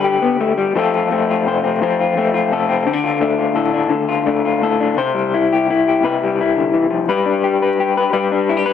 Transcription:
Already playing: D3 G3 B4
0.04 G4
0.22 B3
0.41 A3
0.58 G3
0.75 F3 A3 C4 F4 A4
0.95 F4
1.11 A3 C4
1.30 F4
1.46 C3 C5
1.64 C4
1.82 F3 C4
2.00 F4
2.17 A3 C4
2.34 F4
2.52 C3 A4
2.69 C4
2.87 D3 C4
2.93 D4
3.04 F4
3.21 A3 D4
3.39 F4
3.55 A2 A4
3.74 D4
3.89 D3, muted clean electric guitar stroke
4.08 F4
4.26 A3 D4
4.45 F4
4.62 A2 A4
4.80 D4
4.97 C3 C5
5.14 G3
5.34 E4
5.53 G4
5.70 E4
5.88 G4
6.03 C3 B4
6.23 G3
6.41 E4
6.56 D3
6.74 E3
6.90 F3
7.08 G3 B4
7.26 D4
7.44 G4
7.62 B4
7.80 G4
7.97 B4
8.13 G3 B4
8.31 D4
8.49 E4
8.57 G4
8.66 B4

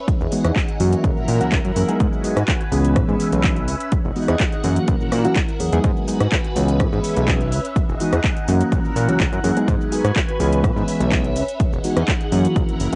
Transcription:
0.08 E1 D#4 G#4 F#5, kick, closed hi-hat, cabasa
0.21 E1, cabasa
0.32 E3 G#3 B3 D#4 F#4, open hi-hat, cabasa
0.45 E2, cross-stick, closed hi-hat, cabasa
0.56 kick, clap, closed hi-hat, cabasa
0.69 closed hi-hat, cabasa
0.79 F#2 E3 F#3 A#3 C#4 E4 F#4 A#4 F#5, open hi-hat, cabasa
0.93 closed hi-hat, cabasa
1.04 C#2, kick, closed hi-hat, cabasa
1.17 A#2, cabasa
1.28 A#2, open hi-hat, cabasa
1.40 C#2 E3 F#3 A#3 C#4 F#4, closed hi-hat, cabasa
1.52 C#2, kick, clap, closed hi-hat, cabasa
1.65 F#2, closed hi-hat, cabasa
1.75 F#2 E3 F#3 A#3 C#4 G#4, open hi-hat, cabasa
1.88 F#3 G#3 B3 D#4 G#4, closed hi-hat, cabasa
2.00 G#2 F#4 B4 G#5, kick, closed hi-hat, cabasa
2.13 cabasa
2.24 F#3 G#3 B3 D#4 G#4, open hi-hat, cabasa
2.36 G#2, cross-stick, closed hi-hat, cabasa
2.48 kick, clap, closed hi-hat, cabasa
2.61 closed hi-hat, cabasa
2.72 C#2 E3 G#3 B3 C#4 G#4 E5, open hi-hat, cabasa
2.85 closed hi-hat, cabasa
2.96 A#2, kick, cross-stick, closed hi-hat, cabasa
3.08 G#2 E3 G#3 B3 C#4 G#4, cabasa
3.20 open hi-hat, cabasa
3.32 B1, closed hi-hat, cabasa
3.44 E3 G#3 B3 C#4 G#4, kick, clap, closed hi-hat, cabasa
3.56 closed hi-hat, cabasa
3.68 C#2, open hi-hat, cabasa
3.80 closed hi-hat, cabasa
3.92 E1 D#4 G#4 F#5, kick, closed hi-hat, cabasa
4.05 E1, cabasa
4.16 E3 G#3 B3 D#4 F#4, open hi-hat, cabasa
4.28 E2, cross-stick, closed hi-hat, cabasa
4.40 kick, clap, closed hi-hat, cabasa
4.53 closed hi-hat, cabasa
4.63 F#2 E3 F#3 A#3 C#4 E4 F#4 A#4, open hi-hat, cabasa
4.76 closed hi-hat, cabasa
4.88 C#2, kick, closed hi-hat, cabasa
5.01 A#2, cabasa
5.12 A#2, cross-stick, open hi-hat, cabasa
5.24 E3 F#3 A#3 C#4 F#4, closed hi-hat, cabasa
5.36 kick, clap, closed hi-hat, cabasa
5.48 closed hi-hat, cabasa
5.59 E2 E3 F#3 A#3 C#4 G#4, open hi-hat, cabasa
5.72 E2 F#3 G#3 B3 D#4 G#4, closed hi-hat, cabasa
5.84 G#2 F#4 B4 G#5, kick, closed hi-hat, cabasa
5.97 cabasa
6.07 F#3 G#3 B3 D#4 G#4, open hi-hat, cabasa
6.20 G#2, cross-stick, closed hi-hat, cabasa
6.32 kick, clap, closed hi-hat, cabasa
6.44 closed hi-hat, cabasa
6.55 C#2 E3 G#3 B3 C#4 G#4 E5, open hi-hat, cabasa
6.68 closed hi-hat, cabasa
6.80 A#2, kick, cross-stick, closed hi-hat, cabasa
6.92 G#2 E3 G#3 B3 C#4 G#4, cabasa
7.04 open hi-hat, cabasa
7.17 B1, closed hi-hat, cabasa
7.27 E3 G#3 B3 C#4 G#4, kick, clap, closed hi-hat, cabasa
7.41 closed hi-hat, cabasa
7.52 C#2, open hi-hat, cabasa
7.65 closed hi-hat, cabasa
7.76 E1 D#4 G#4 F#5, kick, closed hi-hat, cabasa
7.88 E1, cabasa
8.00 E3 G#3 B3 D#4 F#4, open hi-hat, cabasa
8.13 E2, cross-stick, closed hi-hat, cabasa
8.24 kick, clap, closed hi-hat, cabasa
8.37 closed hi-hat, cabasa
8.47 F#2 E3 F#3 A#3 C#4 E4 F#4 A#4, open hi-hat, cabasa
8.60 closed hi-hat, cabasa
8.72 C#2, kick, closed hi-hat, cabasa
8.85 A#2, cabasa
8.96 A#2, open hi-hat, cabasa
9.08 C#2 E3 F#3 A#3 C#4 F#4, closed hi-hat, cabasa
9.20 C#2, kick, clap, closed hi-hat, cabasa
9.32 F#2, closed hi-hat, cabasa
9.43 F#2 E3 F#3 A#3 C#4 G#4, open hi-hat, cabasa
9.56 F#3 G#3 B3 D#4 G#4, closed hi-hat, cabasa
9.68 G#2 F#4 B4 G#5, kick, closed hi-hat, cabasa
9.81 cabasa
9.91 F#3 G#3 B3 D#4 G#4, open hi-hat, cabasa
10.04 G#2, cross-stick, closed hi-hat, cabasa
10.16 kick, clap, closed hi-hat, cabasa
10.28 closed hi-hat, cabasa
10.39 C#2 E3 G#3 B3 C#4 G#4 E5, open hi-hat, cabasa
10.52 closed hi-hat, cabasa
10.64 A#2, kick, cross-stick, closed hi-hat, cabasa
10.76 G#2 E3 G#3 B3 C#4 G#4, cabasa
10.88 open hi-hat, cabasa
11.00 B1, closed hi-hat, cabasa
11.12 E3 G#3 B3 C#4 G#4, kick, clap, closed hi-hat, cabasa
11.24 closed hi-hat, cabasa
11.36 C#2, open hi-hat, cabasa
11.48 closed hi-hat, cabasa
11.60 E1 D#4 G#4 F#5, kick, closed hi-hat, cabasa
11.72 E1, cabasa
11.84 E3 G#3 B3 D#4 F#4, open hi-hat, cabasa
11.96 E2, cross-stick, closed hi-hat, cabasa
12.08 kick, clap, closed hi-hat, cabasa
12.21 closed hi-hat, cabasa
12.31 F#2 E3 F#3 A#3 C#4 E4 F#4 A#4, open hi-hat, cabasa
12.45 closed hi-hat, cabasa
12.56 C#2, kick, closed hi-hat, cabasa
12.69 F#1, closed hi-hat, cabasa
12.80 F#1, open hi-hat, cabasa

